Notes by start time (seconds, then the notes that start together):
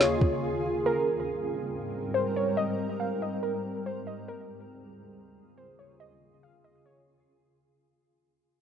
Already playing: D#2 C#3 F4 G#4
0.00 C#5, snare
0.21 kick
0.86 G#2 G3 C4 A#4
2.14 C5
2.36 C#5
2.57 D#5
3.00 F5
3.22 D#5
3.43 A#4
3.86 C5
4.07 D#5
4.28 D#2 C#3 F4 G#4 A#4
5.58 C5
5.79 C#5
6.00 D#5
6.43 F5
6.64 D#5
6.86 C#5